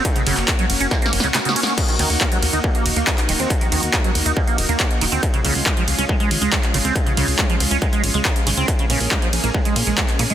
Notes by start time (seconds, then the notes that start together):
Already playing: A#3 C#4 F#4
0.05 kick, closed hi-hat
0.16 C#3, closed hi-hat
0.26 F#1 C#3, open hi-hat, ride
0.37 F#1, clap, closed hi-hat
0.48 A#3, kick, clap, closed hi-hat
0.59 F#3, closed hi-hat
0.70 F#1, open hi-hat, ride
0.80 F#1 C#4, closed hi-hat
0.91 A#3, kick, snare, closed hi-hat
1.02 A#3, snare, closed hi-hat
1.13 F#1, open hi-hat, ride
1.20 C#2 C#3, snare, closed hi-hat
1.34 C#3, snare, clap, closed hi-hat
1.45 C#3, snare, closed hi-hat
1.56 C#4, open hi-hat, ride
1.63 C#4, snare, closed hi-hat
1.78 D#4, kick, closed hi-hat, crash
1.89 D#3, closed hi-hat
1.99 D#2 D#3, open hi-hat, ride
2.10 D#2, open hi-hat
2.21 A#3, kick, clap, closed hi-hat
2.32 F#3, closed hi-hat
2.42 D#2, open hi-hat, ride
2.53 D#2 D#4, closed hi-hat
2.64 A#3, kick
2.75 A#3, closed hi-hat
2.85 D#1, open hi-hat, ride
2.96 D#2 A#3, closed hi-hat
3.07 A#3, kick, clap, closed hi-hat
3.18 clap, closed hi-hat
3.29 D#1 D#3, open hi-hat, ride
3.39 D#2 C4, closed hi-hat
3.50 kick, closed hi-hat
3.61 D#3, closed hi-hat
3.72 D#2 D#3, open hi-hat, ride
3.83 D#2, closed hi-hat
3.93 A#3, kick, clap, closed hi-hat
4.04 F#3, closed hi-hat
4.15 D#2, open hi-hat, ride
4.26 D#2 D#4, closed hi-hat
4.37 A#3, kick
4.47 A#3, closed hi-hat
4.58 D#1, open hi-hat, ride
4.69 D#2 A#3, closed hi-hat
4.80 A#3, kick, clap, closed hi-hat
4.91 closed hi-hat
5.01 D#1 D#3, open hi-hat, ride
5.12 D#2 C4, closed hi-hat
5.23 G#3 C#4 F4, kick, closed hi-hat
5.34 C#3, closed hi-hat
5.44 C#2 C#3, open hi-hat, ride
5.55 C#2, open hi-hat
5.66 G#3, kick, clap, closed hi-hat
5.77 F3, closed hi-hat
5.88 C#2, open hi-hat, ride
5.98 C#2 C#4, closed hi-hat
6.09 G#3, kick
6.20 G#3, closed hi-hat
6.31 G#1, open hi-hat, ride
6.42 C#2 G#3, closed hi-hat
6.52 kick, clap, closed hi-hat
6.63 clap, closed hi-hat
6.74 G#1 C#3, open hi-hat, ride
6.85 C#2 C4, closed hi-hat
6.96 kick, closed hi-hat
7.06 C#3, closed hi-hat
7.17 C#2 C#3, open hi-hat, ride
7.28 C#2, open hi-hat
7.39 G#3, kick, clap, closed hi-hat
7.49 F3, closed hi-hat
7.60 C#2, open hi-hat, ride
7.71 C#2 C#4, closed hi-hat
7.82 G#3, kick, closed hi-hat
7.93 G#3, closed hi-hat
8.03 G#1, open hi-hat, ride
8.14 C#2 G#3, closed hi-hat
8.25 kick, clap, closed hi-hat
8.36 closed hi-hat
8.47 G#1 C#3, open hi-hat, ride
8.57 C#2 C4, closed hi-hat
8.68 A#3 C#4 G#4, kick, closed hi-hat
8.79 C#3, closed hi-hat
8.90 A#1 C#3, open hi-hat, ride
9.01 A#1, open hi-hat
9.11 G#3, kick, clap, closed hi-hat
9.22 F3, closed hi-hat
9.33 A#1, open hi-hat, ride
9.44 A#1 A#3, closed hi-hat
9.54 G#3, kick
9.65 G#3, closed hi-hat
9.76 A#2, open hi-hat, ride
9.87 A#1 G#3, closed hi-hat
9.98 kick, clap, closed hi-hat
10.08 clap, closed hi-hat
10.19 A#2 C#3, open hi-hat, ride
10.30 A#1 G#3, closed hi-hat